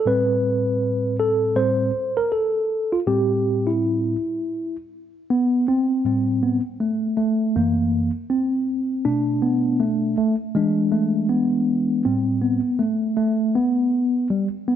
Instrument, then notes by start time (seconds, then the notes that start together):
tine electric piano
0.06 A2 G3 C4 B4
1.20 A4
1.56 A2 G3 C4 C5
2.17 A#4
2.32 A4
2.92 F4
3.07 A2 G3 C4 G4
3.67 E4
5.30 B3
5.68 C4
6.05 A2 G3 C4
6.43 B3
6.80 A3
7.17 A3
7.56 F#2 E3 A#3
8.30 C4
9.05 B2 A3 D4
9.42 B3
9.80 A3
10.17 A3
10.55 E3 G#3 D4
10.92 A3
11.29 B3
12.05 A2 G3 C4
12.42 B3
12.79 A3
13.17 A3
13.55 B3
14.30 G3
14.68 B3